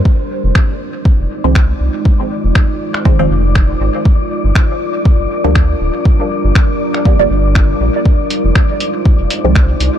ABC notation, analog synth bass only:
X:1
M:4/4
L:1/16
Q:"Swing 16ths" 1/4=120
K:Fdor
V:1 name="Analog synth bass" clef=bass
z3 F,,, z4 z F,,, z C,,2 z C,, z | z3 F,,, z4 z F,,, F,,,3 z A,,, z | z3 G,,, z4 z G,,, z D,,2 z D,,, z | z3 G,,, z4 z G,,, G,,,3 z B,,, z |
z3 F,,, z4 z F,,, z C,,2 z C,, z |]